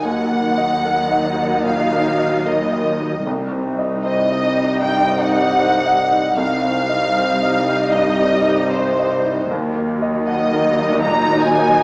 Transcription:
Already playing: D#4
0.02 D#2 F#3 D#4 F#5
0.32 A#3
0.58 D#5
0.85 A#4
1.11 D#5
1.38 D#4
1.64 A#2 F5
1.93 A#3
2.19 D#5
2.46 A#4 D#5
2.73 D#5
3.00 D#4
3.24 C2 G3 D#4
3.52 C4
3.79 D#5
4.03 C5 D#5
4.32 D#5
4.57 D#4
4.82 G2 G5
5.07 C4
5.19 F#5
5.32 D#5
5.59 C5
5.86 D#5
6.11 D#4
6.36 C2 G3 D#4 F5
6.64 C4
6.89 D#5
7.17 C5
7.43 D#5
7.69 D#4
7.91 G2 D#5
8.20 C4
8.47 D#5
8.72 C5
8.99 D#5
9.25 D#4
9.49 D#2 F#3 D#4
9.76 A#3
10.02 D#5
10.26 D#5 F#5
10.53 A#4
10.79 D#5
11.04 A#2 A#5
11.31 A#3
11.43 G#5
11.59 D#5

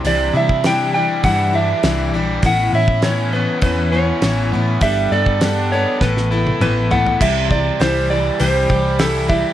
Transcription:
0.04 C2 C3 E3 G3 D4 E4 D5, open hi-hat
0.34 C3 G3 D4 E4 E5
0.49 kick
0.64 C3 E3 G3 D4 E4 G5, snare, open hi-hat
0.94 G3 D4 E4 G5
1.23 G2 E3 G3 D4 E4 F#5, kick, open hi-hat
1.53 G3 D4 E4 E5
1.83 C2 C3 E3 G3 D4 E4, snare, open hi-hat
2.13 A#1 G3 D4 E4
2.43 A1 A2 E3 B3 C#4 E4 F#5, kick, open hi-hat
2.73 A2 B3 C#4 E4 E5
2.88 kick
3.02 A2 E3 B3 C#4 E4 C#5, snare, open hi-hat
3.33 B3 C#4 E4 B4
3.62 E2 E3 B3 C#4 B4, kick, open hi-hat
3.66 E4
3.92 B3 C#4 E4 C#5
4.22 A1 A2 E3 B3 C#4 E4, snare, open hi-hat
4.52 A2 B3 C#4 E4
4.81 G1 G3 B3 D4 A4 E5, kick, open hi-hat
5.12 G2 B3 D4 A4 D5
5.26 kick
5.41 G3 B3 D4 A4, snare, open hi-hat
5.72 B3 D4 A4 C#5
6.01 A1 A2 E3 B3 E4 A4 B4, kick, snare
6.17 snare
6.32 B3 E4 A4
6.47 high tom
6.60 A1 A2 E3 B3 E4 A4 B4, mid tom
6.91 A2 B3 E4 A4 F#5, floor tom
7.06 floor tom
7.20 C2 C3 E3 G3 E4 G4 E5, kick, crash
7.50 G3 E4 G4 D5, kick
7.80 C2 E3 G3 E4 G4 C5, snare, open hi-hat
8.10 E3 G3 E4 G4 D5
8.39 C2 C3 E3 G3 E4 G4 C5, open hi-hat
8.69 C2 G3 E4 G4, kick
8.99 E3 G3 E4 G4 A4, snare, open hi-hat
9.28 E3 G3 E4 G4 E5, kick

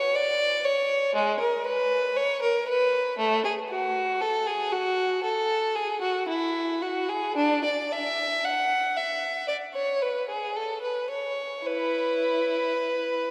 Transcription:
Already playing: C#5
0.15 D5
0.65 C#5
1.15 G#3
1.40 A#4
1.66 B4
2.17 C#5
2.42 A#4
2.68 B4
3.19 A3
3.45 G#4
3.69 F#4
4.21 A4
4.47 G#4
4.72 F#4
5.24 A4
5.75 G#4
6.01 F#4
6.28 E4
6.82 F#4
7.09 G#4
7.36 D4
7.65 D5
7.92 E5
8.44 F#5
8.97 E5
9.48 D5
9.74 C#5
10.02 B4
10.29 G#4
10.56 A4
10.82 B4
11.10 C#5
11.66 E4 B4

